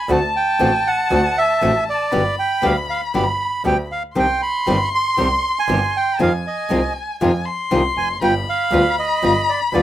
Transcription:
0.00 0.10 G#5 medium
0.00 0.11 B5 medium
0.09 0.30 D2 medium
0.09 0.18 D3 medium
0.09 0.18 A3 medium
0.09 0.19 C4 medium
0.09 0.19 F#4 medium
0.09 2.12 A5 medium
0.09 0.34 A5 medium
0.36 0.88 G5 medium
0.59 0.81 A1 medium
0.59 0.69 D3 medium
0.59 0.69 A3 medium
0.59 0.69 C4 medium
0.59 0.69 F#4 medium
0.87 1.38 F#5 medium
1.10 1.32 D2 medium
1.10 1.20 D3 medium
1.10 1.20 A3 medium
1.10 1.20 C4 medium
1.10 1.20 F#4 medium
1.38 1.84 E5 medium
1.61 1.83 A1 medium
1.61 1.70 D3 medium
1.61 1.71 A3 medium
1.61 1.71 C4 medium
1.61 1.71 F#4 medium
1.89 2.36 D5 medium
2.11 2.34 G1 medium
2.11 2.21 B2 medium
2.11 2.21 D3 medium
2.11 2.21 G3 medium
2.11 2.21 B3 medium
2.11 2.22 G4 medium
2.11 3.90 B5 medium
2.39 2.65 G5 medium
2.62 2.85 D2 medium
2.62 2.72 B2 medium
2.62 2.72 D3 medium
2.62 2.72 G3 medium
2.62 2.72 B3 medium
2.62 2.72 G4 medium
2.62 2.76 F5 medium
2.90 3.01 F5 medium
3.14 3.36 G1 medium
3.14 3.23 B2 medium
3.14 3.23 D3 medium
3.14 3.23 G3 medium
3.14 3.24 B3 medium
3.14 3.24 G4 medium
3.14 3.63 B5 medium
3.65 3.87 D2 medium
3.65 3.74 B2 medium
3.65 3.74 D3 medium
3.65 3.74 G3 medium
3.65 3.74 B3 medium
3.65 3.75 G4 medium
3.65 3.77 G5 medium
3.92 4.03 F5 medium
4.15 4.38 C2 medium
4.15 4.25 C3 medium
4.15 4.25 D#3 medium
4.15 4.25 G3 medium
4.15 4.25 C4 medium
4.15 4.25 G4 medium
4.15 4.41 G5 medium
4.15 6.20 C6 medium
4.42 4.89 B5 medium
4.66 4.89 G1 medium
4.66 4.76 C3 medium
4.66 4.76 D#3 medium
4.66 4.76 G3 medium
4.66 4.76 C4 medium
4.66 4.76 G4 medium
4.95 5.59 C6 medium
5.17 5.40 C2 medium
5.17 5.27 C3 medium
5.17 5.27 D#3 medium
5.17 5.27 G3 medium
5.17 5.27 C4 medium
5.17 5.27 G4 medium
5.59 5.97 G#5 medium
5.68 5.90 G1 medium
5.68 5.77 C3 medium
5.68 5.78 D#3 medium
5.68 5.78 G3 medium
5.68 5.78 C4 medium
5.68 5.78 G4 medium
5.97 6.19 G5 medium
6.18 6.41 F2 medium
6.18 6.28 C3 medium
6.18 6.29 D#3 medium
6.18 6.29 G#3 medium
6.18 6.29 C4 medium
6.18 6.29 F4 medium
6.18 6.33 F5 medium
6.18 7.20 G#5 medium
6.47 6.93 D#5 medium
6.70 6.91 C2 medium
6.70 6.79 C3 medium
6.70 6.79 D#3 medium
6.70 6.79 G#3 medium
6.70 6.80 C4 medium
6.70 6.80 F4 medium
7.20 7.43 F2 medium
7.20 7.30 C3 medium
7.20 7.30 D#3 medium
7.20 7.30 G#3 medium
7.20 7.31 C4 medium
7.20 7.30 F4 medium
7.20 7.47 G#5 medium
7.45 8.22 C6 medium
7.71 7.93 C2 medium
7.71 7.80 C3 medium
7.71 7.80 D#3 medium
7.71 7.81 G#3 medium
7.71 7.81 C4 medium
7.71 7.81 F4 medium
7.97 8.21 F1 soft
7.97 8.08 G#5 medium
8.21 8.43 G1 medium
8.21 8.31 G3 medium
8.21 8.31 B3 medium
8.21 8.31 F4 medium
8.21 8.34 G5 medium
8.21 9.82 B5 medium
8.49 8.96 F5 medium
8.72 8.94 D2 medium
8.72 8.82 G3 medium
8.72 8.82 B3 medium
8.72 8.82 F4 medium
8.99 9.51 D#5 medium
9.23 9.45 G1 medium
9.23 9.32 G3 medium
9.23 9.33 B3 medium
9.23 9.33 F4 medium
9.49 9.61 D5 medium
9.73 9.82 D2 medium
9.73 9.82 G3 medium
9.73 9.82 B3 medium
9.73 9.82 F4 medium
9.73 9.82 D5 medium

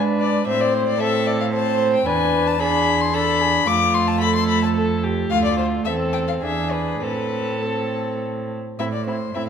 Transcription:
0.00 0.47 G#2 medium
0.00 0.47 D4 medium
0.00 0.47 B4 medium
0.20 0.47 D5 medium
0.47 2.03 A2 medium
0.47 0.99 C4 medium
0.47 0.99 C5 medium
0.47 0.62 E5 medium
0.61 0.75 D5 medium
0.74 0.87 C5 medium
0.87 1.02 D5 medium
1.00 1.52 C4 medium
1.00 1.52 A4 medium
1.00 1.28 E5 medium
1.27 1.40 D5 medium
1.40 1.46 F5 medium
1.53 2.08 C4 medium
1.53 2.05 C5 medium
1.53 1.92 A5 medium
1.94 2.08 G5 medium
2.06 3.64 E2 medium
2.06 2.59 D4 medium
2.06 2.61 B4 medium
2.06 2.49 G#5 loud
2.47 2.61 A5 medium
2.60 3.13 D4 medium
2.60 3.16 G#4 medium
2.60 3.02 B5 loud
3.01 3.15 C6 medium
3.14 3.68 D4 medium
3.14 3.42 A4 medium
3.14 3.69 B5 loud
3.41 3.67 G#4 medium
3.67 5.28 F2 medium
3.67 5.31 A3 medium
3.67 4.23 F4 medium
3.67 3.96 D6 loud
3.94 4.09 C6 medium
4.08 4.20 A5 medium
4.21 4.75 A4 medium
4.21 4.34 B5 loud
4.35 4.48 C6 medium
4.48 4.62 B5 medium
4.63 4.68 A5 medium
4.76 5.05 A4 medium
5.03 5.32 G4 medium
5.30 5.82 D2 medium
5.30 5.88 A3 medium
5.30 5.85 F4 medium
5.30 5.43 F5 medium
5.45 5.57 D5 medium
5.58 5.66 C5 medium
5.85 6.42 E2 medium
5.85 6.44 C4 medium
5.85 6.41 A4 medium
5.85 5.93 E5 medium
6.13 6.19 G5 medium
6.28 6.34 F5 medium
6.42 7.01 E2 medium
6.42 7.03 D4 soft
6.42 7.04 G#4 medium
6.42 6.73 E5 medium
6.72 7.01 B4 medium
7.02 8.55 A2 soft
7.02 7.62 C4 soft
7.02 8.51 A4 medium
7.02 7.64 B4 medium
7.62 8.57 C4 soft
7.62 8.21 A4 medium
8.79 9.28 A2 medium
8.79 8.87 C4 soft
8.79 8.87 E4 soft
8.79 8.85 E5 medium
8.93 9.06 D5 medium
9.07 9.15 C4 soft
9.07 9.16 E4 soft
9.07 9.36 C5 medium
9.34 9.49 A2 medium
9.34 9.43 C4 soft
9.34 9.43 E4 soft
9.34 9.47 E5 medium

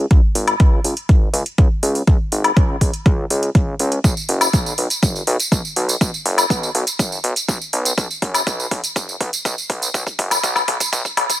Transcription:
0.11 0.21 C#2 loud
0.11 kick loud
0.11 closed hi-hat soft
0.35 0.55 G#1 loud
0.35 open hi-hat loud
0.48 closed hi-hat medium
0.48 high woodblock medium
0.60 0.80 C#2 medium
0.60 kick loud
0.60 closed hi-hat soft
0.84 0.94 C#2 medium
0.84 open hi-hat loud
0.97 closed hi-hat medium
1.09 1.29 G#1 medium
1.09 kick loud
1.09 closed hi-hat soft
1.33 1.43 C#2 loud
1.33 open hi-hat loud
1.46 closed hi-hat medium
1.58 1.68 C#2 medium
1.58 kick loud
1.58 closed hi-hat medium
1.83 2.02 C#2 medium
1.83 open hi-hat loud
1.95 open hi-hat medium
2.07 2.17 C#2 loud
2.07 kick loud
2.07 closed hi-hat soft
2.32 2.52 G#1 loud
2.32 open hi-hat loud
2.44 closed hi-hat medium
2.44 high woodblock medium
2.57 2.76 C#2 loud
2.57 kick loud
2.57 closed hi-hat medium
2.81 2.91 C#2 medium
2.81 kick medium
2.81 open hi-hat loud
2.94 closed hi-hat medium
3.06 3.25 C#2 loud
3.06 kick loud
3.06 closed hi-hat soft
3.30 3.50 C#2 medium
3.30 open hi-hat loud
3.43 closed hi-hat medium
3.55 3.75 C#2 medium
3.55 kick loud
3.55 closed hi-hat soft
3.79 3.99 C#2 medium
3.79 open hi-hat loud
3.92 closed hi-hat medium
4.04 4.14 B1 loud
4.04 kick loud
4.04 closed hi-hat soft
4.04 tambourine medium
4.17 tambourine soft
4.29 4.48 F#1 loud
4.29 open hi-hat loud
4.41 closed hi-hat medium
4.41 tambourine medium
4.41 high woodblock medium
4.53 4.73 B1 medium
4.53 kick loud
4.53 closed hi-hat medium
4.53 tambourine medium
4.66 tambourine soft
4.78 4.88 B1 medium
4.78 open hi-hat loud
4.90 closed hi-hat medium
4.90 tambourine medium
5.03 5.22 F#1 medium
5.03 kick loud
5.03 closed hi-hat soft
5.03 tambourine medium
5.16 tambourine soft
5.27 5.37 B1 loud
5.27 open hi-hat loud
5.40 closed hi-hat medium
5.40 tambourine medium
5.52 5.62 B1 loud
5.52 kick loud
5.52 closed hi-hat soft
5.52 tambourine medium
5.65 tambourine soft
5.76 5.96 B1 medium
5.76 open hi-hat loud
5.89 open hi-hat medium
5.89 tambourine medium
6.01 6.11 B1 loud
6.01 kick loud
6.01 closed hi-hat medium
6.01 tambourine medium
6.14 tambourine soft
6.26 6.45 F#1 loud
6.26 open hi-hat loud
6.38 closed hi-hat medium
6.38 tambourine medium
6.38 high woodblock medium
6.50 6.70 B1 medium
6.50 kick loud
6.50 closed hi-hat medium
6.50 tambourine medium
6.63 tambourine soft
6.75 6.85 B1 medium
6.75 open hi-hat loud
6.87 closed hi-hat medium
6.87 tambourine medium
6.99 7.19 F#1 medium
6.99 kick loud
6.99 closed hi-hat medium
6.99 tambourine medium
7.12 tambourine soft
7.24 7.34 B1 loud
7.24 open hi-hat loud
7.36 closed hi-hat medium
7.36 tambourine medium
7.48 7.58 B1 loud
7.48 kick loud
7.48 closed hi-hat medium
7.48 tambourine medium
7.61 tambourine soft
7.73 7.93 B1 medium
7.73 open hi-hat loud
7.85 closed hi-hat medium
7.85 tambourine medium
7.98 8.07 B1 loud
7.98 kick loud
7.98 closed hi-hat medium
7.98 tambourine medium
8.11 tambourine soft
8.22 8.42 F#1 loud
8.22 kick loud
8.22 open hi-hat loud
8.34 closed hi-hat medium
8.34 tambourine medium
8.34 high woodblock medium
8.47 8.66 B1 medium
8.47 kick loud
8.47 closed hi-hat medium
8.47 tambourine medium
8.60 tambourine soft
8.71 8.81 B1 medium
8.71 kick loud
8.71 open hi-hat loud
8.84 closed hi-hat medium
8.84 tambourine medium
8.96 9.16 F#1 medium
8.96 kick loud
8.96 closed hi-hat medium
8.96 tambourine medium
9.09 tambourine soft
9.21 9.30 B1 loud
9.21 kick loud
9.21 open hi-hat loud
9.33 closed hi-hat medium
9.33 tambourine medium
9.45 9.55 B1 loud
9.45 kick loud
9.45 closed hi-hat medium
9.45 tambourine medium
9.58 tambourine soft
9.70 9.89 B1 medium
9.70 kick loud
9.70 open hi-hat loud
9.82 open hi-hat medium
9.82 tambourine medium
9.94 10.04 B1 loud
9.94 kick loud
9.94 closed hi-hat medium
9.94 tambourine medium
10.07 kick medium
10.07 tambourine soft
10.19 10.39 F#1 loud
10.19 kick loud
10.19 open hi-hat loud
10.31 kick medium
10.31 closed hi-hat medium
10.31 tambourine medium
10.31 high woodblock medium
10.43 10.63 B1 medium
10.43 kick loud
10.43 closed hi-hat medium
10.43 tambourine medium
10.56 kick medium
10.56 tambourine soft
10.56 high woodblock medium
10.68 10.78 B1 medium
10.68 kick loud
10.68 open hi-hat loud
10.80 kick loud
10.80 closed hi-hat medium
10.80 tambourine medium
10.93 11.03 B1 medium
10.93 kick loud
10.93 closed hi-hat medium
10.93 tambourine medium
11.05 kick medium
11.05 tambourine soft
11.17 11.27 B1 medium
11.17 kick loud
11.17 open hi-hat loud
11.17 high woodblock medium
11.30 kick medium
11.30 closed hi-hat medium
11.30 tambourine medium

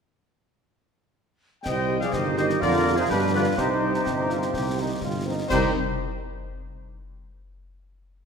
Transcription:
1.63 2.06 C2 medium
1.63 2.00 G3 medium
1.63 2.00 C5 medium
1.63 1.99 D#5 medium
1.63 1.98 G5 medium
1.63 concert bass drum medium
1.63 snare medium
1.63 crash soft
1.89 1.98 D#3 soft
1.89 1.98 G3 soft
1.89 1.98 G4 soft
2.00 2.07 F3 medium
2.00 2.13 G#4 medium
2.00 2.15 D5 medium
2.00 2.12 F5 medium
2.00 snare soft
2.13 2.54 G1 medium
2.13 2.36 D#3 medium
2.13 2.58 D#4 medium
2.13 2.38 G4 medium
2.13 2.36 C5 medium
2.13 2.36 D#5 medium
2.13 concert bass drum medium
2.13 snare medium
2.37 2.46 D#3 medium
2.37 2.60 D#3 medium
2.37 2.46 G3 medium
2.37 2.46 G4 medium
2.37 2.61 G4 medium
2.37 2.48 C5 medium
2.37 2.60 D#5 medium
2.37 snare medium
2.50 snare soft
2.60 3.02 F2 medium
2.60 2.99 D3 medium
2.60 3.09 F4 medium
2.60 2.98 F4 medium
2.60 2.95 A#4 medium
2.60 2.95 D5 medium
2.60 concert bass drum medium
2.60 snare medium
2.85 2.94 F3 medium
2.85 2.94 G#3 medium
2.85 2.94 F4 medium
2.97 3.11 C3 medium
2.97 3.04 D#4 medium
2.97 3.09 G#4 medium
2.97 3.03 C5 medium
3.09 3.50 G2 medium
3.09 3.33 B2 medium
3.09 3.54 D4 medium
3.09 3.17 D4 medium
3.09 3.20 G4 medium
3.09 3.33 B4 medium
3.09 concert bass drum medium
3.09 snare soft
3.34 3.45 D3 medium
3.34 3.43 F3 medium
3.34 3.43 G3 medium
3.34 3.43 D4 medium
3.34 3.56 F4 medium
3.34 3.57 B4 medium
3.34 3.46 D5 medium
3.57 3.98 C2 medium
3.57 4.99 C3 medium
3.57 4.98 D#4 medium
3.57 4.01 D#4 medium
3.57 4.99 G4 medium
3.57 4.98 C5 medium
3.57 concert bass drum medium
3.57 snare medium
3.81 3.90 D#3 soft
3.81 3.90 G3 soft
3.81 3.90 C4 soft
3.94 snare soft
4.06 4.47 G1 medium
4.06 4.29 D#4 soft
4.06 concert bass drum medium
4.06 snare medium
4.29 4.39 D#3 soft
4.29 4.39 G3 soft
4.29 4.39 C4 soft
4.29 4.52 F4 soft
4.29 snare soft
4.42 snare soft
4.54 4.95 C2 medium
4.54 4.77 G4 medium
4.54 concert bass drum medium
4.54 snare medium
4.78 4.86 D#3 soft
4.78 4.87 G3 soft
4.78 4.87 C4 soft
4.78 5.03 D#4 soft
5.01 5.43 G1 medium
5.01 5.26 F4 soft
5.01 concert bass drum medium
5.01 snare soft
5.26 5.35 D#3 soft
5.26 5.35 G3 soft
5.26 5.34 C4 soft
5.26 5.50 D#4 soft
5.49 5.71 C2 medium
5.49 5.70 D#3 medium
5.49 5.71 D#3 medium
5.49 5.70 G3 medium
5.49 5.71 G3 medium
5.49 5.70 C4 medium
5.49 5.71 C4 medium
5.49 5.78 D#4 medium
5.49 5.71 G4 medium
5.49 5.70 C5 medium
5.49 concert bass drum medium
5.49 snare medium
5.49 crash medium

